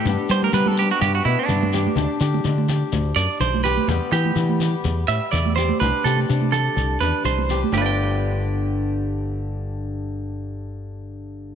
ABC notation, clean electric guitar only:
X:1
M:4/4
L:1/16
Q:"Swing 16ths" 1/4=124
K:G
V:1 name="Clean electric guitar"
z2 c _B =B A G F G F E D4- D- | D z8 z d2 c2 B2 | z2 G2 z6 e2 d2 c2 | B2 A2 z2 A4 B2 c3 z |
[GBdg]16- | [GBdg]16 |]